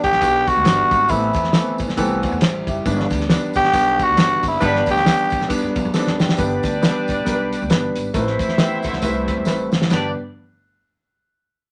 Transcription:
Already playing: grand piano B3 D4 G4
0.04 upright bass G1, tenor saxophone G4, kick, ride, tambourine
0.12 upright bass B1, snare
0.21 upright bass B1, grand piano B3 D4 F#4, kick, ride, tambourine
0.27 grand piano G4
0.47 tenor saxophone F#4, kick, ride, tambourine
0.56 upright bass D2
0.64 upright bass G1, grand piano B3 D4 F#4, snare, ride, tambourine
0.71 grand piano G3
0.91 upright bass G#1, kick, ride, tambourine
1.09 upright bass A1, grand piano E3 A3 B3 C4 A4, tenor saxophone E4, kick, ride, tambourine
1.33 upright bass E2, kick, ride, tambourine
1.44 snare
1.53 grand piano E3 A3 B3 C4 A4, snare, ride, tambourine
1.78 upright bass A1, kick, ride, tambourine
1.88 upright bass C2, snare
1.97 upright bass C2, grand piano E3 A3 B3 C4 A4, clean electric guitar B3 G4, kick, ride, tambourine
2.23 clean electric guitar A3 F#4, kick, ride, tambourine
2.32 upright bass E2
2.40 upright bass A1, clean electric guitar G3 E4, grand piano E4 C5, snare, ride, tambourine
2.67 upright bass F#1, grand piano G4 E5, kick, ride, tambourine
2.85 upright bass G1, grand piano G3 B3 D4, kick, ride, tambourine
3.00 snare
3.10 upright bass D2, kick, ride, tambourine
3.20 snare
3.29 grand piano G3 B3 D4, snare, ride, tambourine
3.53 upright bass G1, tenor saxophone G4, kick, ride, tambourine
3.64 upright bass B1, snare
3.72 upright bass B1, grand piano G3 B3 D4, kick, ride, tambourine
3.99 kick, ride, tambourine
4.03 tenor saxophone F#4
4.09 upright bass D2
4.16 upright bass G1, grand piano G3 B3 C#4, snare, ride, tambourine
4.22 grand piano D4
4.43 upright bass F#1, kick, open hi-hat, ride, tambourine
4.48 tenor saxophone E4
4.59 upright bass G1, grand piano G3 B3 D4, horn section B3 D4 G4 B4, kick, hi-hat pedal, ride, tambourine
4.65 tenor saxophone D4
4.75 snare
4.86 upright bass D2, kick, ride, tambourine
4.91 tenor saxophone G4
4.97 snare
5.04 grand piano G3 B3 D4, snare, ride, tambourine
5.30 upright bass G1, kick, ride, tambourine
5.41 upright bass B1, snare
5.48 grand piano G3 B3 D4, kick, ride, tambourine
5.63 upright bass G2
5.76 upright bass B2, clean electric guitar F#3 D4, kick, ride, tambourine
5.85 upright bass E2
5.94 grand piano G3 B3 C4, clean electric guitar A4, muted upright bass stroke, snare, tambourine
5.99 grand piano D4
6.07 upright bass F#2, snare
6.19 upright bass G2, clean electric guitar B3 G4, snare, tambourine
6.29 snare
6.37 upright bass G1, grand piano G3 B3 D4 B4, horn section D4 G4 B4 D5, kick, closed hi-hat, tambourine
6.63 upright bass D2, kick, closed hi-hat, tambourine
6.82 grand piano G3 B3 D4 B4, snare, closed hi-hat, tambourine
7.08 upright bass G1, kick, closed hi-hat, tambourine
7.18 upright bass B1
7.25 upright bass B1, grand piano G3 B3 D4 A#4, kick, closed hi-hat, tambourine
7.31 grand piano B4
7.53 closed hi-hat, tambourine
7.62 upright bass D2
7.70 upright bass G1, grand piano G3 B3 D4 B4, snare, closed hi-hat, tambourine
7.96 upright bass G#1, closed hi-hat, tambourine
8.14 upright bass A1, grand piano A3 C4 E4 A#4, horn section E4 C5 E5, kick, closed hi-hat, tambourine
8.20 grand piano B4
8.27 snare
8.39 upright bass E2, kick, closed hi-hat, tambourine
8.48 snare
8.58 grand piano A3 C4 E4 B4, clean electric guitar B3 G4, snare, closed hi-hat, tambourine
8.82 upright bass A1, clean electric guitar A3 F#4, kick, closed hi-hat, tambourine
8.93 upright bass C2, snare
9.02 upright bass C2, clean electric guitar G3 E4, grand piano A3 C4 E4 B4, kick, closed hi-hat, tambourine
9.28 kick, closed hi-hat, tambourine
9.37 upright bass E2
9.45 upright bass A1, grand piano A3 C4 E4 B4, snare, tambourine
9.72 upright bass F#1, snare, tambourine
9.82 snare
9.90 upright bass G1, grand piano G3 B3 D4 B4, horn section B3 D4 G4 D5, snare, ride bell, tambourine

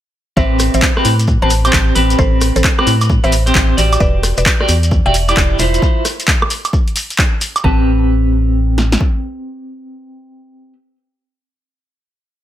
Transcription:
0.37 fm bass A1, clean electric guitar C4 G4 B4, synth pluck C5 E5, kick, shekere
0.59 cross-stick, open hi-hat, shekere
0.74 fm bass A1, synth pluck C5 E5, closed hi-hat, shekere
0.82 kick, clap, closed hi-hat
0.97 clean electric guitar C4 G4 B4, cross-stick
1.05 fm bass A2, open hi-hat, shekere
1.19 closed hi-hat, shekere
1.28 kick, shekere
1.42 fm bass A1, clean electric guitar C4 G4 B4, synth pluck C5 A5
1.50 open hi-hat, shekere
1.65 clean electric guitar C4 G4 C5, closed hi-hat, high woodblock, shekere
1.73 fm bass A1, kick, clap, shekere
1.95 fm bass A1, clean electric guitar C4 G4 B4, open hi-hat, shekere
2.10 closed hi-hat, shekere
2.18 fm bass A1, synth pluck A4 C5, kick, shekere
2.41 cross-stick, open hi-hat, shekere
2.56 fm bass A1, synth pluck A4 C5, closed hi-hat, shekere
2.64 kick, clap, closed hi-hat, shekere
2.78 clean electric guitar C4 G4 B4, cross-stick, high woodblock
2.87 fm bass A2, open hi-hat, shekere
3.01 closed hi-hat, high woodblock, shekere
3.09 kick, shekere
3.24 fm bass A1, clean electric guitar C4 G4 B4, synth pluck C5 E5, closed hi-hat
3.32 open hi-hat, shekere
3.46 clean electric guitar C4 G4 C5, closed hi-hat, shekere
3.54 fm bass A1, kick, clap, shekere
3.77 fm bass A1, clean electric guitar F#4 G4 D5, open hi-hat, shekere
3.93 closed hi-hat, high woodblock, shekere
4.00 fm bass E1, synth pluck B4 D5, kick
4.23 cross-stick, open hi-hat, shekere
4.37 fm bass E1, synth pluck B4 D5, closed hi-hat, shekere
4.46 kick, clap, closed hi-hat, shekere
4.60 clean electric guitar F#4 G4 D5, cross-stick
4.68 fm bass E2, open hi-hat, shekere
4.83 closed hi-hat, shekere
4.91 kick, shekere
5.06 fm bass E1, clean electric guitar F#4 G4 D5, synth pluck E5 G5
5.14 open hi-hat, shekere
5.28 clean electric guitar E4 G4 D5, closed hi-hat, high woodblock, shekere
5.37 fm bass E1, kick, clap, shekere
5.59 fm bass E1, clean electric guitar E4 F4 C5, open hi-hat, shekere
5.74 closed hi-hat, shekere
5.82 kick, shekere
6.05 cross-stick, open hi-hat, shekere
6.20 closed hi-hat, shekere
6.28 kick, clap, closed hi-hat, shekere
6.42 cross-stick, high woodblock
6.50 open hi-hat, shekere
6.65 closed hi-hat, high woodblock, shekere
6.73 kick, shekere
6.88 closed hi-hat
6.96 open hi-hat, shekere
7.10 closed hi-hat, shekere
7.18 kick, clap, shekere
7.41 open hi-hat, shekere
7.56 closed hi-hat, high woodblock, shekere
7.64 fm bass A1, clean electric guitar C4 G4 B4, synth pluck A5, kick
8.78 snare
8.92 snare
9.01 kick

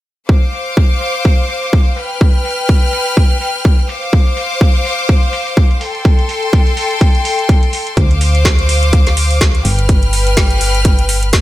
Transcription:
0.29 violin section C5 F5 D6, kick
0.43 closed hi-hat
0.53 open hi-hat
0.67 closed hi-hat
0.77 kick, closed hi-hat
0.91 closed hi-hat
1.01 open hi-hat
1.15 closed hi-hat
1.25 kick, closed hi-hat
1.39 closed hi-hat
1.49 open hi-hat
1.63 open hi-hat
1.73 kick, closed hi-hat
1.87 closed hi-hat
1.97 violin section B4 G5 F6, open hi-hat
2.10 closed hi-hat
2.21 kick, closed hi-hat
2.35 closed hi-hat
2.45 open hi-hat
2.59 closed hi-hat
2.69 kick, closed hi-hat
2.83 closed hi-hat
2.93 open hi-hat
3.07 closed hi-hat
3.17 kick, closed hi-hat
3.31 closed hi-hat
3.41 open hi-hat
3.55 closed hi-hat
3.65 kick, closed hi-hat
3.79 closed hi-hat
3.89 violin section C5 F5 D6, open hi-hat
4.03 closed hi-hat
4.13 kick, closed hi-hat
4.27 closed hi-hat
4.37 open hi-hat
4.51 closed hi-hat
4.61 kick, closed hi-hat
4.75 closed hi-hat
4.85 open hi-hat
4.99 closed hi-hat
5.09 kick, closed hi-hat
5.23 closed hi-hat
5.33 open hi-hat
5.47 open hi-hat
5.57 kick, closed hi-hat
5.71 closed hi-hat
5.81 violin section A4 G5 C6, open hi-hat
5.95 closed hi-hat
6.05 kick, closed hi-hat
6.19 closed hi-hat
6.29 open hi-hat
6.43 closed hi-hat
6.53 kick, closed hi-hat
6.67 closed hi-hat
6.77 open hi-hat
6.91 closed hi-hat
7.01 kick, closed hi-hat
7.15 closed hi-hat
7.25 open hi-hat
7.39 closed hi-hat
7.49 kick, closed hi-hat
7.63 closed hi-hat
7.73 open hi-hat
7.87 closed hi-hat
7.97 fm bass D2, violin section C5 F5 D6, kick, closed hi-hat
8.11 closed hi-hat
8.21 open hi-hat
8.35 closed hi-hat
8.45 kick, snare, closed hi-hat
8.59 closed hi-hat
8.69 open hi-hat
8.83 closed hi-hat
8.93 kick, closed hi-hat
9.07 snare, closed hi-hat
9.17 open hi-hat
9.31 open hi-hat
9.41 kick, snare, closed hi-hat
9.55 closed hi-hat
9.65 fm bass G1, violin section B4 G5 F6, open hi-hat
9.79 closed hi-hat
9.89 kick, closed hi-hat
10.03 closed hi-hat
10.13 open hi-hat
10.27 closed hi-hat
10.37 kick, snare, closed hi-hat
10.51 closed hi-hat
10.61 open hi-hat
10.75 closed hi-hat
10.85 kick, closed hi-hat
10.99 closed hi-hat
11.09 open hi-hat
11.23 closed hi-hat
11.33 kick, snare, closed hi-hat

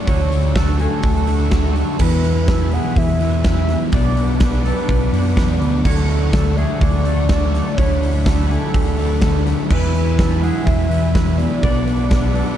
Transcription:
Already playing: accordion A3 F#5 C#6, clean electric guitar C#5
0.06 picked electric bass D2, overdriven electric guitar D3 A3 D4 F#4, soft synth lead C#5, clean electric guitar C#5, accordion E6, kick, open hi-hat
0.31 distorted electric guitar A3 D4, open hi-hat
0.54 overdriven electric guitar D3 A3 D4 F#4, clean electric guitar A4, kick, snare, open hi-hat
0.78 overdriven electric guitar A3 D4 F#4, soft synth lead A4, clean electric guitar G#5, open hi-hat
1.03 picked electric bass D2, kick, open hi-hat
1.27 overdriven electric guitar A3 D4 F#4, clean electric guitar A4, open hi-hat
1.50 overdriven electric guitar D3 A3 D4 F#4, clean electric guitar A4, kick, snare, open hi-hat
1.74 distorted electric guitar A3 D4, open hi-hat
1.98 distorted electric guitar E2 B2, picked electric bass E2, overdriven electric guitar E3 G#3 B3 E4, accordion B4 E5 G#5, soft synth lead B4, clean electric guitar B4, kick, crash
2.23 distorted electric guitar B2 E3, open hi-hat
2.46 distorted electric guitar E2 B2, overdriven electric guitar E3 G#3 B3, clean electric guitar A4, kick, snare, open hi-hat
2.51 overdriven electric guitar E4
2.71 overdriven electric guitar G#3 B3 E4, clean electric guitar G#4, soft synth lead F#5, open hi-hat
2.96 picked electric bass E2, soft synth lead E5, kick, open hi-hat
3.19 distorted electric guitar B2 E3, overdriven electric guitar G#3 B3 E4, clean electric guitar B4, open hi-hat
3.42 distorted electric guitar E2 B2, overdriven electric guitar E3 G#3 B3 E4, clean electric guitar B4, kick, snare, open hi-hat
3.46 soft synth lead E5
3.68 distorted electric guitar B2 E3, snare, open hi-hat
3.92 picked electric bass B1, overdriven electric guitar B2 F#3 B3 D4, accordion D4 F#5 D6, clean electric guitar D5, soft synth lead D5, kick, open hi-hat
4.16 distorted electric guitar F#3 B3, open hi-hat
4.40 overdriven electric guitar B2 F#3 B3 D4, clean electric guitar B4, kick, snare, open hi-hat
4.64 overdriven electric guitar F#3 B3 D4, clean electric guitar A4, soft synth lead B4, open hi-hat
4.89 picked electric bass B1, kick, open hi-hat
5.13 picked electric bass F#2, overdriven electric guitar F#3 B3 D4, clean electric guitar B4, open hi-hat
5.36 picked electric bass E2, overdriven electric guitar B2 F#3 B3 D4, clean electric guitar B4, kick, snare, open hi-hat
5.60 picked electric bass D2, distorted electric guitar F#3 B3, open hi-hat
5.84 picked electric bass D2, overdriven electric guitar D3 F#3 A3 D4, accordion A3 F#5 C#6, soft synth lead A4, clean electric guitar C#5, kick, crash
6.09 distorted electric guitar A3 D4, open hi-hat
6.33 overdriven electric guitar D3 F#3 A3 D4, clean electric guitar A4, kick, snare, open hi-hat
6.56 overdriven electric guitar F#3 A3 D4, clean electric guitar G#4, soft synth lead E5, open hi-hat
6.81 picked electric bass D2, soft synth lead D5, kick, open hi-hat
7.05 overdriven electric guitar F#3 A3 D4, clean electric guitar A4, open hi-hat
7.29 overdriven electric guitar D3 F#3 A3, clean electric guitar A4, soft synth lead D5, kick, snare, open hi-hat
7.33 overdriven electric guitar D4
7.53 distorted electric guitar A3 D4, soft synth lead D5, snare, open hi-hat
7.76 picked electric bass D2, overdriven electric guitar D3 F#3 A3 D4, soft synth lead C#5, clean electric guitar C#5, accordion B5, kick, open hi-hat
8.02 distorted electric guitar A3 D4, open hi-hat
8.25 overdriven electric guitar D3 F#3 A3 D4, clean electric guitar A4, kick, snare, open hi-hat
8.49 overdriven electric guitar F#3 A3 D4, soft synth lead A4, clean electric guitar G#5, open hi-hat
8.74 picked electric bass D2, kick, open hi-hat
8.98 overdriven electric guitar F#3 A3 D4, clean electric guitar A4, open hi-hat
9.21 overdriven electric guitar D3 F#3 A3 D4, clean electric guitar A4, kick, snare, open hi-hat
9.45 distorted electric guitar A3 D4, snare, open hi-hat
9.69 distorted electric guitar E2 B2, picked electric bass E2, overdriven electric guitar E3 G#3 B3 E4, clean electric guitar B4, soft synth lead B4, accordion B4 E5 G#5 E6, kick, crash
9.93 distorted electric guitar B2 E3, open hi-hat
10.17 distorted electric guitar E2 B2, overdriven electric guitar E3 G#3 B3 E4, clean electric guitar A4, kick, snare, open hi-hat
10.42 overdriven electric guitar G#3 B3 E4, clean electric guitar G#4, soft synth lead F#5, open hi-hat
10.66 picked electric bass E2, soft synth lead E5, kick, open hi-hat
10.89 distorted electric guitar B2 E3, overdriven electric guitar G#3 B3 E4, clean electric guitar B4, open hi-hat
11.14 distorted electric guitar E2 B2, overdriven electric guitar E3 G#3 B3 E4, clean electric guitar B4, kick, snare, open hi-hat
11.38 distorted electric guitar B2 E3, soft synth lead D5, open hi-hat
11.62 picked electric bass B1, overdriven electric guitar B2 F#3 B3 D4, accordion D4 F#5 D6, clean electric guitar D5, kick, open hi-hat
11.87 distorted electric guitar F#3 B3, open hi-hat
12.10 overdriven electric guitar B2 F#3 B3 D4, clean electric guitar B4, kick, snare, open hi-hat
12.34 overdriven electric guitar F#3 B3 D4, clean electric guitar A4, open hi-hat

